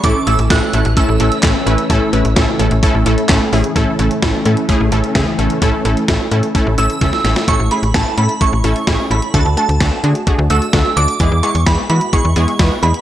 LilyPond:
<<
  \new Staff \with { instrumentName = "Synth bell" } { \time 4/4 \key a \major \tempo 4 = 129 d'''8 e'''8 fis'''4 e'''2~ | e'''2. r4 | r1 | r2 r8 e'''4. |
cis'''8 b''8 a''8 b''8 cis'''4. b''8 | a''8 a''4 r4 e'''4 d'''8~ | d'''8 cis'''8 b''8 b''8 cis'''4. b''8 | }
  \new Staff \with { instrumentName = "Synth pluck" } { \time 4/4 \key a \major <a cis' e' a'>8 <a cis' e' a'>8 <a cis' e' a'>8 <a cis' e' a'>8 <a cis' e' a'>8 <a cis' e' a'>8 <a cis' e' a'>8 <a cis' e' b'>8 | <a cis' e' a'>8 <a cis' e' b'>8 <a cis' e' a'>8 <a cis' e' a'>8 <a cis' e' a'>8 <a cis' e' a'>8 <a cis' e' a'>8 <a cis' e' gis'>8 | <a cis' e' a'>8 <a cis' e' a'>8 <a cis' e' a'>8 <a cis' e' a'>8 <a cis' e' gis'>8 <a cis' e' a'>8 <a cis' e' gis'>8 <a cis' e' a'>8 | <a cis' e' a'>8 <a cis' e' a'>8 <a cis' e' a'>8 <a cis' e' a'>8 <a cis' e' a'>8 <a cis' e' a'>8 <a cis' e' a'>8 <a cis' e' a'>8 |
<a cis' e' a'>8 <a cis' e' gis'>8 <a cis' e' a'>8 <a cis' e' a'>8 <a cis' e' a'>8 <a cis' e' a'>8 <a cis' e' gis'>8 <a cis' e' a'>8 | <a d' fis' a'>8 <a d' fis' a'>8 <a d' fis' a'>8 <a d' fis' gis'>8 <a d' fis' gis'>8 <a d' fis' a'>8 <a d' fis' a'>8 <a d' fis' a'>8 | <gis b e' gis'>8 <gis b e' gis'>8 <gis b e' gis'>8 <gis b e' fis'>8 <gis b e' gis'>8 <gis b e' gis'>8 <gis b e' b'>8 <gis b e' gis'>8 | }
  \new Staff \with { instrumentName = "String machine" } { \time 4/4 \key a \major <e a cis'>1~ | <e a cis'>1 | <e a cis'>1~ | <e a cis'>1 |
r1 | r1 | r1 | }
  \new Staff \with { instrumentName = "FM bass" } { \clef bass \time 4/4 \key a \major a,,16 r16 a,,16 a,,16 a,,16 r16 a,,16 a,,16 r16 a,,16 a,,16 r16 a,,16 r16 a,,16 r16 | a,,16 r16 a,,16 a,,16 a,,16 r16 a,,16 a,,16 r16 a,,16 a,,16 r16 a,,16 r16 a,,16 r16 | a,,16 r16 a,,16 r16 a,,16 r16 a,16 r8 a,,16 a,,16 r16 cis,16 r16 a,,16 r16 | a,,16 r16 a,,16 r16 a,,16 r16 a,16 r8 a,,16 a,,16 r16 cis,16 r16 a,,16 r16 |
a,,16 a,,16 r16 a,,16 a,,16 r16 a,16 r8 a,,16 a,,16 r16 a,,16 r16 a,,16 r16 | d,16 d,16 r16 d,16 d,16 r16 d16 r8 d,16 d,16 r16 d,16 r16 d,16 r16 | e,16 e,16 r16 e,16 e,16 r16 e16 r8 e,16 e,16 r16 e,16 r16 e,16 r16 | }
  \new DrumStaff \with { instrumentName = "Drums" } \drummode { \time 4/4 <hh bd>8 hh16 hh16 <hh bd sn>8 hh16 hh16 <hh bd>8 hh16 hh16 <hc hh bd sn>8 hh16 hh16 | <hh bd>8 hh16 hh16 <hh bd sn>8 hh16 hh16 <hh bd>8 hh16 hh16 <hc hh bd sn>8 hho16 hh16 | <hh bd>8 hh16 hh16 <hh bd sn>8 hh16 hh16 <hh bd>8 hh16 hh16 <hh bd sn>8 hh16 hh16 | <hh bd>8 hh16 hh16 <hh bd sn>8 hh16 hh16 <hh bd>8 hh16 hh16 <hh bd sn>16 sn16 <hh sn>16 <hh sn>16 |
<hh bd>8 hh16 hh16 <hh bd sn>8 hh16 hh16 <hh bd>8 hh16 hh16 <hh bd sn>8 hh16 hh16 | <hh bd>8 hh16 hh16 <hh bd sn>8 hh16 hh16 <hh bd>8 hh16 hh16 <hh bd sn>8 hh16 hh16 | <hh bd>8 hh16 hh16 <hh bd sn>8 hh16 hh16 <hh bd>8 hh16 hh16 <hh bd sn>8 hh16 hh16 | }
>>